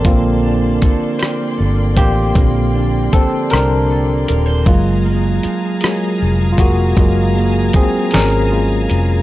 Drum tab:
HH |x-xx-x|x-xx-x|x-xx-x|x-xx-x|
SD |---r--|---r--|---r--|---o--|
BD |o-o--o|o-o---|o----o|o-o---|